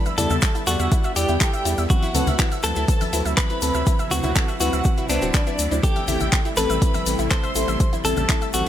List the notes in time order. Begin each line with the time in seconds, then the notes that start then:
Already playing: D3 G3 B3 E4
0.06 E5, closed hi-hat, high conga, shaker
0.18 E2 G3 E4 A4 D5 A5, open hi-hat, low conga, shaker
0.30 E2 E5, closed hi-hat, low conga, shaker
0.42 G3 E4 D5, kick, clap, closed hi-hat, shaker
0.55 E4, closed hi-hat, shaker
0.67 E2 G3 E4 F#4 A4 D5 F#5, open hi-hat, high conga, shaker
0.80 E2 E5, closed hi-hat, shaker
0.92 G3 E4 D5, kick, closed hi-hat, shaker
1.04 E5, closed hi-hat, shaker
1.16 E2 G3 E4 G4 D5 G5, open hi-hat, shaker
1.28 E2 E4, closed hi-hat, shaker
1.41 G3 E4 A4 E5, kick, clap, closed hi-hat, shaker
1.53 E5, closed hi-hat, shaker
1.65 E2 G3 E4 D5, open hi-hat, shaker
1.78 E2 E5, closed hi-hat, shaker
1.90 C3 F#3 C4 E4 F#4 B4 F#5, kick, closed hi-hat, shaker
2.03 E4, closed hi-hat, high conga, shaker
2.14 D2 F#3 C4 E4 A4 B4, open hi-hat, low conga, shaker
2.27 D2 E5, closed hi-hat, low conga, shaker
2.39 F#3 C4 E4 B4, kick, clap, closed hi-hat, shaker
2.52 E5, closed hi-hat, shaker
2.63 D2 F#3 C4 E4 A4 B4 A5, clap, open hi-hat, high conga, shaker
2.76 D2 E4, closed hi-hat, shaker
2.88 F#3 C4 E4 A4 B4, kick, closed hi-hat, shaker
3.01 E5, open hi-hat, high conga, shaker
3.13 D2 F#3 C4 E4 B4, open hi-hat, shaker
3.25 D2 E5, closed hi-hat, shaker
3.37 E4 B4 B5, kick, clap, closed hi-hat, shaker
3.49 E4, closed hi-hat, shaker
3.62 D2 F#3 C4 E4 A4 B4, open hi-hat, shaker
3.74 D2 E5, closed hi-hat, shaker
3.87 F#3 C4 E4 B4, kick, closed hi-hat, shaker
3.99 E5, closed hi-hat, high conga, shaker
4.11 D2 F#3 C4 E4 F#4 B4 F#5, open hi-hat, low conga, shaker
4.23 D2 E4, closed hi-hat, low conga, shaker
4.36 F#3 C4 E4 A4 B4, kick, clap, closed hi-hat, shaker
4.48 E5, closed hi-hat, shaker
4.60 D2 F#3 C4 E4 F#4 B4 F#5, open hi-hat, high conga, shaker
4.73 D2 E5, closed hi-hat, shaker
4.84 F#3 C4 E4 B4, kick, closed hi-hat, shaker
4.97 E4, closed hi-hat, shaker
5.09 C2 F#3 B3 C4 D4 E4 C5 D5, open hi-hat, shaker
5.22 D1 F#3 C4 E4 F#4 C5, closed hi-hat, shaker
5.34 B4, kick, clap, closed hi-hat, shaker
5.47 F#3 C4 E4 B4, closed hi-hat, shaker
5.59 D2, open hi-hat, shaker
5.71 D2 F#3 C4 D4 E4 D5, closed hi-hat, shaker
5.83 C3 G3 A3 C4 G4 A4 G5, kick, closed hi-hat, shaker
5.96 E5, closed hi-hat, high conga, shaker
6.08 A1 G3 C4 E4 A4, open hi-hat, low conga, shaker
6.20 A1 E5, closed hi-hat, low conga, shaker
6.32 G3 C4 A4, kick, clap, closed hi-hat, shaker
6.45 E4, closed hi-hat, shaker
6.57 A1 G3 C4 A4 B4 B5, clap, open hi-hat, high conga, shaker
6.70 A1 E5, closed hi-hat, shaker
6.82 E4 A4, kick, closed hi-hat, shaker
6.94 E5, open hi-hat, high conga, shaker
7.06 A1 G3 C4 A4, open hi-hat, shaker
7.19 A1 E4, closed hi-hat, shaker
7.31 G3 C4 A4 B4 C5 C6, kick, clap, closed hi-hat, shaker
7.44 E5, closed hi-hat, shaker
7.55 A1 G3 C4 E4 A4, open hi-hat, shaker
7.68 A1 E5, closed hi-hat, shaker
7.80 G3 C4 A4, kick, closed hi-hat, shaker
7.93 E4, closed hi-hat, high conga, shaker
8.04 A1 G3 C4 A4 A5, open hi-hat, low conga, shaker
8.16 A1 E5, closed hi-hat, low conga, shaker
8.29 G3 C4 E4 A4, kick, clap, closed hi-hat, shaker
8.42 E5, closed hi-hat, shaker
8.54 A1 G3 C4 F#4 A4 F#5, open hi-hat, high conga, shaker